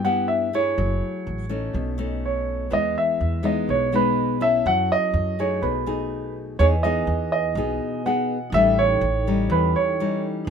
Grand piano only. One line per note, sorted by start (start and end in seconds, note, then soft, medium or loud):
0.05 0.27 F#5 medium
0.28 0.53 E5 medium
0.55 1.96 C#5 medium
2.25 2.74 C#5 medium
2.73 2.95 D#5 medium
2.98 3.47 E5 medium
3.45 3.70 D#5 medium
3.70 3.92 C#5 medium
3.96 4.39 B4 medium
4.42 4.67 E5 medium
4.67 4.91 F#5 loud
4.92 5.41 D#5 loud
5.40 5.64 C#5 medium
5.62 6.31 B4 medium
6.59 6.65 C#5 loud
6.83 7.31 D#5 medium
7.32 8.07 D#5 medium
8.06 8.56 F#5 medium
8.54 8.79 E5 loud
8.79 9.53 C#5 loud
9.52 9.76 B4 medium
9.76 10.21 C#5 medium